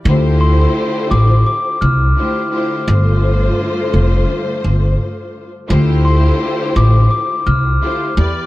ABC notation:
X:1
M:4/4
L:1/16
Q:"Swing 16ths" 1/4=85
K:Dm
V:1 name="Glockenspiel"
z2 c'4 d'2 d'2 f'2 z4 | z16 | z2 c'4 d'2 d'2 f'2 z4 |]
V:2 name="String section"
[D,A,EFGc]8- [D,A,EFGc]3 z [D,A,EFGc]2 [D,A,EFGc]2 | [G,,D,A,Fc]12- [G,,D,A,Fc]2 z2 | [D,A,EFGc]8- [D,A,EFGc]3 z [D,A,EFGc]2 [E,EG=Bd]2 |]
V:3 name="Upright bass" clef=bass
D,,4 z2 A,,,2 z2 C,,2 z4 | G,,,4 z2 F,,,2 z2 G,,,2 z4 | D,,4 z2 A,,,2 z2 C,,2 z2 E,,2 |]